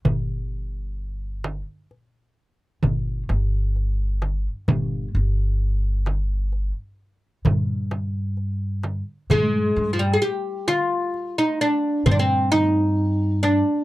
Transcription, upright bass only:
X:1
M:10/8
L:1/8
Q:1/4=65
K:none
V:1 name="Upright bass" clef=bass
G,,,4 z2 G,,, G,,,3 | G,,, G,,,4 z G,,4 | G,, G,, z4 G,,4 |]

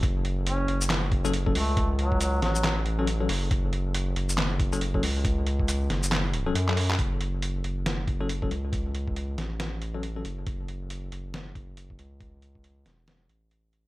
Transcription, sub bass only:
X:1
M:4/4
L:1/8
Q:"Swing 16ths" 1/4=138
K:F#m
V:1 name="Sub bass" clef=bass
F,,,3 F,,,4 C,,- | C,,3 A,,,4 F,,, | F,,,3 F,,,4 C,,- | C,,3 F,,,3 F,,2 |
F,,,3 F,,,4 C,,- | C,,3 A,,,4 F,,, | F,,,3 F,,,4 C,,- | C,,3 E,,,2 A,,,3 |]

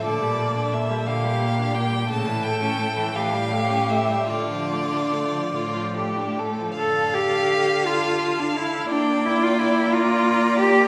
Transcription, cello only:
X:1
M:6/8
L:1/16
Q:3/8=57
K:Dm
V:1 name="Cello"
B,,6 B,,6 | A,,6 A,,6 | D,6 A,,6 | A2 G4 F3 D E2 |
D2 E F E2 F4 G2 |]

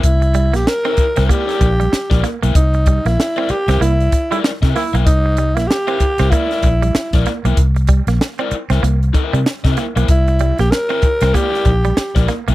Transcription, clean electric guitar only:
X:1
M:4/4
L:1/16
Q:"Swing 16ths" 1/4=96
K:Cmix
V:1 name="Clean electric guitar"
z2 G, B, z C z C B, z2 G, z2 B, B, | z2 G, B, z C z C B, z2 G, z2 B, B, | z2 G, B, z C z C B, z2 G, z2 B, B, | z2 G, B, z C z C B, z2 G, z2 B, B, |
z2 G, B, z C z C B, z2 G, z2 B, B, |]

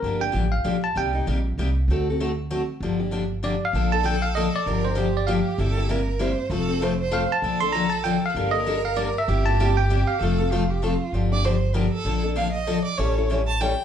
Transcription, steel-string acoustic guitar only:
X:1
M:3/4
L:1/8
Q:"Swing" 1/4=194
K:Gm
V:1 name="Steel-string acoustic guitar"
[D,F,B,DG] [B,DG] [D,F,B,DG] z [D,F,B,DG] z | [C,G,B,EG] [B,EG] [C,G,B,EG] z [C,G,B,EG] z | [D,A,C^FA] [CFA] [D,A,CFA] z [D,A,CFA] z | [D,F,B,DG] [B,DG] [D,F,B,DG] z [D,F,B,DG] z |
[K:Bb] [D,F,B,DA] [B,DA] [D,F,B,DA] z [D,F,B,DA] z | [D,F,B,DG] [B,DG] [D,F,B,DG] z [D,F,B,DG] z | [C,G,B,=EG] [B,EG] [C,G,B,EG] z [C,G,B,EG] z | [F,A,CFA] [CFA] [F,A,CFA] z [F,A,CFA] z |
[D,F,B,DA] [B,DA] [D,F,B,DA] z [D,F,B,DA] z | [D,G,B,DA] [B,DA] [D,G,B,DA] z [D,G,B,DA] z | [C,G,B,=EG] [B,EG] [C,G,B,EG] z [C,G,B,EG] z | [F,A,CFA] [CFA] [F,A,CFA] z [F,A,CFA] z |
[K:Gm] [D,F,B,DG] [B,DG] [D,F,B,DG] z [D,F,B,DG] z | [D,F,B,DA] [B,DA] [D,F,B,DA] z [D,F,B,DA] z | [=E,G,^C=EA] [CEA] [E,G,CEA] z [E,G,CEA] z |]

